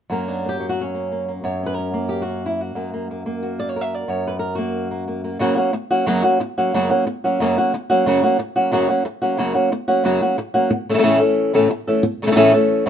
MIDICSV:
0, 0, Header, 1, 3, 480
1, 0, Start_track
1, 0, Tempo, 331126
1, 157, Time_signature, 4, 2, 24, 8
1, 18690, End_track
2, 0, Start_track
2, 0, Title_t, "Nylon-string guitar"
2, 0, Program_c, 0, 24
2, 139, Note_on_c, 0, 42, 59
2, 148, Note_on_c, 0, 54, 42
2, 164, Note_on_c, 0, 58, 41
2, 178, Note_on_c, 0, 70, 39
2, 405, Note_on_c, 0, 62, 64
2, 635, Note_off_c, 0, 58, 0
2, 641, Note_on_c, 0, 58, 39
2, 701, Note_off_c, 0, 70, 0
2, 702, Note_off_c, 0, 62, 0
2, 707, Note_on_c, 0, 67, 78
2, 866, Note_off_c, 0, 54, 0
2, 872, Note_on_c, 0, 54, 44
2, 999, Note_off_c, 0, 67, 0
2, 1005, Note_on_c, 0, 66, 76
2, 1175, Note_on_c, 0, 61, 58
2, 1184, Note_off_c, 0, 66, 0
2, 1361, Note_off_c, 0, 58, 0
2, 1367, Note_on_c, 0, 58, 29
2, 1610, Note_off_c, 0, 58, 0
2, 1616, Note_on_c, 0, 58, 33
2, 1854, Note_off_c, 0, 58, 0
2, 1860, Note_on_c, 0, 58, 33
2, 1896, Note_off_c, 0, 61, 0
2, 2078, Note_off_c, 0, 42, 0
2, 2084, Note_on_c, 0, 42, 62
2, 2097, Note_on_c, 0, 73, 41
2, 2356, Note_off_c, 0, 58, 0
2, 2361, Note_on_c, 0, 61, 32
2, 2405, Note_off_c, 0, 73, 0
2, 2411, Note_on_c, 0, 71, 66
2, 2523, Note_off_c, 0, 71, 0
2, 2523, Note_on_c, 0, 70, 69
2, 2578, Note_off_c, 0, 61, 0
2, 2584, Note_on_c, 0, 61, 34
2, 2802, Note_off_c, 0, 54, 0
2, 2808, Note_on_c, 0, 58, 46
2, 3015, Note_off_c, 0, 70, 0
2, 3029, Note_on_c, 0, 67, 63
2, 3217, Note_on_c, 0, 66, 67
2, 3220, Note_off_c, 0, 67, 0
2, 3299, Note_off_c, 0, 61, 0
2, 3304, Note_on_c, 0, 61, 29
2, 3559, Note_off_c, 0, 61, 0
2, 3565, Note_on_c, 0, 64, 54
2, 3570, Note_off_c, 0, 66, 0
2, 3769, Note_off_c, 0, 64, 0
2, 3780, Note_on_c, 0, 66, 63
2, 3985, Note_off_c, 0, 42, 0
2, 3990, Note_on_c, 0, 42, 59
2, 3991, Note_off_c, 0, 58, 0
2, 3997, Note_on_c, 0, 58, 42
2, 4250, Note_off_c, 0, 58, 0
2, 4255, Note_on_c, 0, 58, 33
2, 4500, Note_off_c, 0, 58, 0
2, 4506, Note_on_c, 0, 58, 36
2, 4720, Note_off_c, 0, 58, 0
2, 4726, Note_on_c, 0, 58, 44
2, 4846, Note_off_c, 0, 66, 0
2, 4967, Note_on_c, 0, 66, 37
2, 5211, Note_on_c, 0, 74, 69
2, 5348, Note_off_c, 0, 74, 0
2, 5348, Note_on_c, 0, 73, 70
2, 5454, Note_on_c, 0, 70, 38
2, 5526, Note_off_c, 0, 73, 0
2, 5526, Note_on_c, 0, 76, 68
2, 5718, Note_off_c, 0, 76, 0
2, 5718, Note_on_c, 0, 74, 71
2, 5912, Note_off_c, 0, 42, 0
2, 5918, Note_on_c, 0, 42, 59
2, 5938, Note_off_c, 0, 74, 0
2, 5938, Note_on_c, 0, 73, 61
2, 6191, Note_off_c, 0, 70, 0
2, 6197, Note_on_c, 0, 71, 69
2, 6213, Note_off_c, 0, 73, 0
2, 6240, Note_off_c, 0, 58, 0
2, 6362, Note_off_c, 0, 71, 0
2, 6368, Note_on_c, 0, 70, 65
2, 6587, Note_off_c, 0, 70, 0
2, 6599, Note_off_c, 0, 66, 0
2, 6599, Note_on_c, 0, 66, 66
2, 6642, Note_on_c, 0, 58, 43
2, 7100, Note_off_c, 0, 58, 0
2, 7118, Note_on_c, 0, 58, 31
2, 7343, Note_off_c, 0, 58, 0
2, 7360, Note_on_c, 0, 58, 38
2, 7583, Note_off_c, 0, 58, 0
2, 7600, Note_on_c, 0, 58, 33
2, 7675, Note_off_c, 0, 66, 0
2, 7802, Note_off_c, 0, 42, 0
2, 7815, Note_off_c, 0, 58, 0
2, 7819, Note_on_c, 0, 42, 74
2, 7828, Note_on_c, 0, 49, 59
2, 7829, Note_on_c, 0, 54, 68
2, 7833, Note_on_c, 0, 58, 70
2, 7843, Note_on_c, 0, 66, 75
2, 7844, Note_on_c, 0, 61, 72
2, 8046, Note_off_c, 0, 66, 0
2, 8062, Note_off_c, 0, 61, 0
2, 8063, Note_on_c, 0, 66, 44
2, 8064, Note_off_c, 0, 42, 0
2, 8066, Note_off_c, 0, 58, 0
2, 8068, Note_off_c, 0, 49, 0
2, 8069, Note_off_c, 0, 54, 0
2, 8080, Note_on_c, 0, 61, 50
2, 8083, Note_on_c, 0, 58, 47
2, 8086, Note_on_c, 0, 54, 43
2, 8293, Note_off_c, 0, 58, 0
2, 8296, Note_off_c, 0, 54, 0
2, 8299, Note_off_c, 0, 61, 0
2, 8306, Note_off_c, 0, 66, 0
2, 8561, Note_on_c, 0, 66, 55
2, 8569, Note_on_c, 0, 61, 44
2, 8579, Note_on_c, 0, 58, 45
2, 8581, Note_on_c, 0, 54, 41
2, 8778, Note_off_c, 0, 54, 0
2, 8785, Note_off_c, 0, 58, 0
2, 8788, Note_on_c, 0, 42, 77
2, 8790, Note_off_c, 0, 61, 0
2, 8794, Note_on_c, 0, 49, 71
2, 8795, Note_off_c, 0, 66, 0
2, 8796, Note_on_c, 0, 54, 82
2, 8802, Note_on_c, 0, 58, 80
2, 8807, Note_on_c, 0, 61, 80
2, 8813, Note_on_c, 0, 66, 77
2, 9025, Note_off_c, 0, 66, 0
2, 9029, Note_off_c, 0, 42, 0
2, 9032, Note_off_c, 0, 49, 0
2, 9032, Note_off_c, 0, 54, 0
2, 9034, Note_off_c, 0, 61, 0
2, 9036, Note_off_c, 0, 58, 0
2, 9042, Note_on_c, 0, 66, 54
2, 9052, Note_on_c, 0, 61, 46
2, 9061, Note_on_c, 0, 54, 45
2, 9061, Note_on_c, 0, 58, 39
2, 9266, Note_off_c, 0, 54, 0
2, 9272, Note_off_c, 0, 61, 0
2, 9273, Note_off_c, 0, 58, 0
2, 9276, Note_off_c, 0, 66, 0
2, 9534, Note_on_c, 0, 66, 52
2, 9536, Note_on_c, 0, 61, 47
2, 9540, Note_on_c, 0, 58, 42
2, 9553, Note_on_c, 0, 54, 46
2, 9759, Note_off_c, 0, 54, 0
2, 9761, Note_off_c, 0, 66, 0
2, 9762, Note_off_c, 0, 61, 0
2, 9764, Note_off_c, 0, 58, 0
2, 9774, Note_on_c, 0, 49, 68
2, 9776, Note_on_c, 0, 42, 71
2, 9776, Note_on_c, 0, 54, 71
2, 9781, Note_on_c, 0, 58, 68
2, 9788, Note_on_c, 0, 61, 78
2, 9793, Note_on_c, 0, 66, 77
2, 9988, Note_off_c, 0, 66, 0
2, 9994, Note_off_c, 0, 61, 0
2, 9997, Note_off_c, 0, 58, 0
2, 10002, Note_off_c, 0, 42, 0
2, 10002, Note_off_c, 0, 49, 0
2, 10002, Note_off_c, 0, 54, 0
2, 10005, Note_on_c, 0, 66, 54
2, 10011, Note_on_c, 0, 61, 54
2, 10015, Note_on_c, 0, 58, 43
2, 10027, Note_on_c, 0, 54, 42
2, 10226, Note_off_c, 0, 54, 0
2, 10230, Note_off_c, 0, 58, 0
2, 10233, Note_off_c, 0, 66, 0
2, 10240, Note_off_c, 0, 61, 0
2, 10496, Note_on_c, 0, 66, 46
2, 10504, Note_on_c, 0, 61, 49
2, 10512, Note_on_c, 0, 58, 41
2, 10518, Note_on_c, 0, 54, 41
2, 10722, Note_off_c, 0, 66, 0
2, 10724, Note_off_c, 0, 54, 0
2, 10726, Note_off_c, 0, 61, 0
2, 10730, Note_off_c, 0, 58, 0
2, 10732, Note_on_c, 0, 42, 68
2, 10732, Note_on_c, 0, 49, 68
2, 10742, Note_on_c, 0, 54, 72
2, 10748, Note_on_c, 0, 58, 77
2, 10751, Note_on_c, 0, 66, 76
2, 10755, Note_on_c, 0, 61, 87
2, 10960, Note_off_c, 0, 42, 0
2, 10960, Note_off_c, 0, 49, 0
2, 10965, Note_off_c, 0, 54, 0
2, 10968, Note_off_c, 0, 58, 0
2, 10970, Note_off_c, 0, 66, 0
2, 10972, Note_off_c, 0, 61, 0
2, 10985, Note_on_c, 0, 66, 49
2, 10989, Note_on_c, 0, 61, 42
2, 11000, Note_on_c, 0, 58, 46
2, 11006, Note_on_c, 0, 54, 39
2, 11207, Note_off_c, 0, 66, 0
2, 11208, Note_off_c, 0, 58, 0
2, 11209, Note_off_c, 0, 61, 0
2, 11210, Note_off_c, 0, 54, 0
2, 11447, Note_on_c, 0, 66, 58
2, 11458, Note_on_c, 0, 61, 48
2, 11464, Note_on_c, 0, 58, 48
2, 11466, Note_on_c, 0, 54, 51
2, 11678, Note_off_c, 0, 54, 0
2, 11678, Note_off_c, 0, 66, 0
2, 11683, Note_off_c, 0, 61, 0
2, 11686, Note_off_c, 0, 58, 0
2, 11686, Note_on_c, 0, 42, 70
2, 11690, Note_on_c, 0, 49, 72
2, 11696, Note_on_c, 0, 54, 72
2, 11705, Note_on_c, 0, 58, 66
2, 11711, Note_on_c, 0, 61, 66
2, 11713, Note_on_c, 0, 66, 73
2, 11917, Note_off_c, 0, 42, 0
2, 11920, Note_off_c, 0, 49, 0
2, 11920, Note_off_c, 0, 66, 0
2, 11922, Note_off_c, 0, 54, 0
2, 11927, Note_off_c, 0, 58, 0
2, 11927, Note_off_c, 0, 61, 0
2, 11938, Note_on_c, 0, 66, 53
2, 11944, Note_on_c, 0, 61, 49
2, 11952, Note_on_c, 0, 58, 54
2, 11954, Note_on_c, 0, 54, 39
2, 12150, Note_off_c, 0, 54, 0
2, 12153, Note_off_c, 0, 61, 0
2, 12154, Note_off_c, 0, 58, 0
2, 12157, Note_off_c, 0, 66, 0
2, 12405, Note_on_c, 0, 66, 52
2, 12415, Note_on_c, 0, 61, 52
2, 12420, Note_on_c, 0, 58, 44
2, 12427, Note_on_c, 0, 54, 41
2, 12628, Note_off_c, 0, 54, 0
2, 12635, Note_off_c, 0, 58, 0
2, 12636, Note_on_c, 0, 42, 75
2, 12637, Note_off_c, 0, 66, 0
2, 12638, Note_off_c, 0, 61, 0
2, 12646, Note_on_c, 0, 54, 82
2, 12647, Note_on_c, 0, 49, 72
2, 12653, Note_on_c, 0, 58, 80
2, 12655, Note_on_c, 0, 61, 77
2, 12658, Note_on_c, 0, 66, 83
2, 12867, Note_off_c, 0, 66, 0
2, 12870, Note_off_c, 0, 61, 0
2, 12872, Note_off_c, 0, 42, 0
2, 12877, Note_off_c, 0, 54, 0
2, 12878, Note_off_c, 0, 49, 0
2, 12881, Note_off_c, 0, 58, 0
2, 12884, Note_on_c, 0, 66, 44
2, 12887, Note_on_c, 0, 61, 47
2, 12900, Note_on_c, 0, 58, 40
2, 12902, Note_on_c, 0, 54, 40
2, 13104, Note_off_c, 0, 58, 0
2, 13107, Note_off_c, 0, 54, 0
2, 13108, Note_off_c, 0, 61, 0
2, 13111, Note_off_c, 0, 66, 0
2, 13360, Note_on_c, 0, 66, 58
2, 13371, Note_on_c, 0, 61, 47
2, 13374, Note_on_c, 0, 58, 46
2, 13380, Note_on_c, 0, 54, 43
2, 13588, Note_off_c, 0, 58, 0
2, 13588, Note_on_c, 0, 42, 71
2, 13590, Note_off_c, 0, 54, 0
2, 13593, Note_off_c, 0, 61, 0
2, 13594, Note_off_c, 0, 66, 0
2, 13599, Note_on_c, 0, 49, 67
2, 13605, Note_on_c, 0, 58, 64
2, 13607, Note_on_c, 0, 54, 66
2, 13611, Note_on_c, 0, 61, 82
2, 13616, Note_on_c, 0, 66, 72
2, 13819, Note_off_c, 0, 66, 0
2, 13826, Note_off_c, 0, 61, 0
2, 13828, Note_off_c, 0, 42, 0
2, 13829, Note_off_c, 0, 58, 0
2, 13834, Note_off_c, 0, 49, 0
2, 13836, Note_on_c, 0, 66, 48
2, 13838, Note_off_c, 0, 54, 0
2, 13843, Note_on_c, 0, 61, 44
2, 13846, Note_on_c, 0, 58, 51
2, 13859, Note_on_c, 0, 54, 44
2, 14073, Note_off_c, 0, 66, 0
2, 14076, Note_off_c, 0, 61, 0
2, 14077, Note_off_c, 0, 54, 0
2, 14077, Note_off_c, 0, 58, 0
2, 14319, Note_on_c, 0, 66, 53
2, 14324, Note_on_c, 0, 61, 45
2, 14337, Note_on_c, 0, 58, 47
2, 14342, Note_on_c, 0, 54, 40
2, 14547, Note_off_c, 0, 54, 0
2, 14551, Note_off_c, 0, 58, 0
2, 14551, Note_on_c, 0, 42, 67
2, 14553, Note_off_c, 0, 61, 0
2, 14554, Note_off_c, 0, 66, 0
2, 14559, Note_on_c, 0, 49, 74
2, 14565, Note_on_c, 0, 54, 72
2, 14568, Note_on_c, 0, 58, 70
2, 14570, Note_on_c, 0, 61, 67
2, 14576, Note_on_c, 0, 66, 78
2, 14790, Note_off_c, 0, 42, 0
2, 14794, Note_off_c, 0, 49, 0
2, 14796, Note_off_c, 0, 54, 0
2, 14798, Note_off_c, 0, 66, 0
2, 14799, Note_off_c, 0, 58, 0
2, 14799, Note_off_c, 0, 61, 0
2, 14815, Note_on_c, 0, 66, 48
2, 14822, Note_on_c, 0, 61, 39
2, 14827, Note_on_c, 0, 58, 39
2, 14836, Note_on_c, 0, 54, 42
2, 15032, Note_off_c, 0, 54, 0
2, 15037, Note_off_c, 0, 58, 0
2, 15042, Note_off_c, 0, 66, 0
2, 15045, Note_off_c, 0, 61, 0
2, 15278, Note_on_c, 0, 66, 55
2, 15280, Note_on_c, 0, 61, 52
2, 15292, Note_on_c, 0, 58, 47
2, 15302, Note_on_c, 0, 54, 43
2, 15513, Note_off_c, 0, 66, 0
2, 15514, Note_off_c, 0, 61, 0
2, 15520, Note_off_c, 0, 58, 0
2, 15525, Note_off_c, 0, 54, 0
2, 15793, Note_on_c, 0, 57, 52
2, 15794, Note_on_c, 0, 49, 52
2, 15794, Note_on_c, 0, 52, 52
2, 15804, Note_on_c, 0, 61, 58
2, 15807, Note_on_c, 0, 69, 61
2, 15840, Note_off_c, 0, 49, 0
2, 15842, Note_off_c, 0, 52, 0
2, 15846, Note_off_c, 0, 57, 0
2, 15854, Note_off_c, 0, 61, 0
2, 15855, Note_off_c, 0, 69, 0
2, 15858, Note_on_c, 0, 49, 62
2, 15859, Note_on_c, 0, 52, 63
2, 15863, Note_on_c, 0, 57, 63
2, 15871, Note_on_c, 0, 61, 64
2, 15872, Note_on_c, 0, 69, 64
2, 15900, Note_off_c, 0, 49, 0
2, 15904, Note_off_c, 0, 52, 0
2, 15911, Note_off_c, 0, 57, 0
2, 15917, Note_off_c, 0, 69, 0
2, 15918, Note_off_c, 0, 61, 0
2, 15918, Note_on_c, 0, 49, 70
2, 15921, Note_on_c, 0, 52, 71
2, 15928, Note_on_c, 0, 57, 72
2, 15934, Note_on_c, 0, 69, 78
2, 15935, Note_on_c, 0, 61, 74
2, 15967, Note_off_c, 0, 49, 0
2, 15974, Note_off_c, 0, 52, 0
2, 15976, Note_off_c, 0, 57, 0
2, 15978, Note_off_c, 0, 61, 0
2, 15981, Note_on_c, 0, 45, 70
2, 15982, Note_off_c, 0, 69, 0
2, 15985, Note_on_c, 0, 49, 77
2, 15991, Note_on_c, 0, 52, 78
2, 15994, Note_on_c, 0, 57, 83
2, 15996, Note_on_c, 0, 61, 78
2, 15999, Note_on_c, 0, 69, 87
2, 16214, Note_off_c, 0, 69, 0
2, 16224, Note_off_c, 0, 45, 0
2, 16226, Note_off_c, 0, 49, 0
2, 16228, Note_off_c, 0, 61, 0
2, 16229, Note_off_c, 0, 52, 0
2, 16230, Note_off_c, 0, 57, 0
2, 16231, Note_on_c, 0, 69, 55
2, 16245, Note_on_c, 0, 61, 45
2, 16250, Note_on_c, 0, 57, 39
2, 16255, Note_on_c, 0, 52, 40
2, 16708, Note_off_c, 0, 69, 0
2, 16714, Note_off_c, 0, 52, 0
2, 16715, Note_off_c, 0, 61, 0
2, 16718, Note_off_c, 0, 57, 0
2, 16721, Note_on_c, 0, 45, 68
2, 16730, Note_on_c, 0, 49, 70
2, 16732, Note_on_c, 0, 52, 68
2, 16737, Note_on_c, 0, 57, 75
2, 16741, Note_on_c, 0, 61, 79
2, 16744, Note_on_c, 0, 69, 74
2, 16941, Note_off_c, 0, 45, 0
2, 16950, Note_off_c, 0, 57, 0
2, 16951, Note_off_c, 0, 49, 0
2, 16951, Note_off_c, 0, 52, 0
2, 16954, Note_off_c, 0, 61, 0
2, 16958, Note_off_c, 0, 69, 0
2, 17213, Note_on_c, 0, 69, 54
2, 17218, Note_on_c, 0, 61, 48
2, 17226, Note_on_c, 0, 57, 49
2, 17228, Note_on_c, 0, 52, 45
2, 17438, Note_off_c, 0, 69, 0
2, 17441, Note_off_c, 0, 61, 0
2, 17444, Note_off_c, 0, 57, 0
2, 17446, Note_off_c, 0, 52, 0
2, 17717, Note_on_c, 0, 49, 53
2, 17728, Note_on_c, 0, 57, 50
2, 17729, Note_on_c, 0, 52, 52
2, 17732, Note_on_c, 0, 69, 60
2, 17736, Note_on_c, 0, 61, 56
2, 17761, Note_off_c, 0, 49, 0
2, 17772, Note_off_c, 0, 57, 0
2, 17773, Note_off_c, 0, 52, 0
2, 17773, Note_off_c, 0, 61, 0
2, 17778, Note_on_c, 0, 49, 63
2, 17785, Note_off_c, 0, 69, 0
2, 17789, Note_on_c, 0, 57, 66
2, 17790, Note_on_c, 0, 52, 68
2, 17790, Note_on_c, 0, 61, 66
2, 17803, Note_on_c, 0, 69, 64
2, 17832, Note_off_c, 0, 49, 0
2, 17839, Note_off_c, 0, 52, 0
2, 17840, Note_off_c, 0, 57, 0
2, 17845, Note_off_c, 0, 69, 0
2, 17848, Note_off_c, 0, 61, 0
2, 17849, Note_on_c, 0, 49, 65
2, 17856, Note_on_c, 0, 52, 70
2, 17857, Note_on_c, 0, 57, 77
2, 17862, Note_on_c, 0, 69, 76
2, 17865, Note_on_c, 0, 61, 83
2, 17900, Note_off_c, 0, 49, 0
2, 17908, Note_off_c, 0, 52, 0
2, 17908, Note_off_c, 0, 57, 0
2, 17910, Note_on_c, 0, 45, 75
2, 17912, Note_off_c, 0, 61, 0
2, 17913, Note_off_c, 0, 69, 0
2, 17918, Note_on_c, 0, 49, 76
2, 17925, Note_on_c, 0, 52, 95
2, 17925, Note_on_c, 0, 57, 82
2, 17929, Note_on_c, 0, 61, 94
2, 17930, Note_on_c, 0, 69, 89
2, 18145, Note_off_c, 0, 45, 0
2, 18149, Note_off_c, 0, 49, 0
2, 18153, Note_off_c, 0, 52, 0
2, 18153, Note_off_c, 0, 57, 0
2, 18155, Note_off_c, 0, 61, 0
2, 18155, Note_off_c, 0, 69, 0
2, 18173, Note_on_c, 0, 61, 56
2, 18173, Note_on_c, 0, 69, 54
2, 18184, Note_on_c, 0, 57, 45
2, 18189, Note_on_c, 0, 52, 39
2, 18632, Note_off_c, 0, 57, 0
2, 18634, Note_off_c, 0, 52, 0
2, 18635, Note_off_c, 0, 61, 0
2, 18635, Note_off_c, 0, 69, 0
2, 18641, Note_on_c, 0, 45, 73
2, 18643, Note_on_c, 0, 49, 73
2, 18690, Note_off_c, 0, 45, 0
2, 18690, Note_off_c, 0, 49, 0
2, 18690, End_track
3, 0, Start_track
3, 0, Title_t, "Muted nylon-string guitar strokes"
3, 8305, Note_on_c, 9, 29, 74
3, 8450, Note_off_c, 9, 29, 0
3, 9278, Note_on_c, 9, 29, 72
3, 9423, Note_off_c, 9, 29, 0
3, 10243, Note_on_c, 9, 29, 60
3, 10388, Note_off_c, 9, 29, 0
3, 11219, Note_on_c, 9, 29, 73
3, 11364, Note_off_c, 9, 29, 0
3, 12158, Note_on_c, 9, 29, 68
3, 12303, Note_off_c, 9, 29, 0
3, 13119, Note_on_c, 9, 29, 67
3, 13264, Note_off_c, 9, 29, 0
3, 14087, Note_on_c, 9, 29, 65
3, 14232, Note_off_c, 9, 29, 0
3, 15047, Note_on_c, 9, 29, 77
3, 15192, Note_off_c, 9, 29, 0
3, 15519, Note_on_c, 9, 29, 65
3, 15663, Note_off_c, 9, 29, 0
3, 16958, Note_on_c, 9, 29, 77
3, 17103, Note_off_c, 9, 29, 0
3, 17441, Note_on_c, 9, 29, 69
3, 17586, Note_off_c, 9, 29, 0
3, 18690, End_track
0, 0, End_of_file